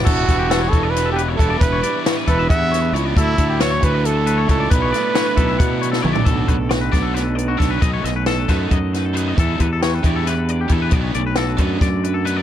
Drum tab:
CC |x-------------|--------------|--------------|--------------|
HH |--x-x-x-x-x-x-|x-x-x-x-x-x-x-|x-x-x-x-x-x-x-|x-x-x-x-x-x---|
SD |--o-o---o-----|----o-----o---|----o---------|--o-o------o--|
T2 |--------------|--------------|--------------|------------o-|
FT |--------------|--------------|--------------|-------------o|
BD |o-o---o-----o-|o-----o-o-----|o-o---o-----o-|o-----o-o-----|

CC |--------------|--------------|--------------|--------------|
HH |x-x-x-x-x-x-x-|x-x-x-x-x-x-x-|x-x-x-x-x-x-x-|x-x-x-x-x-x-x-|
SD |----o-o-o---o-|--o-o-o---o---|----o---o-----|----o---o-----|
T2 |--------------|--------------|--------------|--------------|
FT |--------------|--------------|--------------|--------------|
BD |o-o---o-----o-|o-----o-o-----|o-o---o-----o-|o-----o-o-----|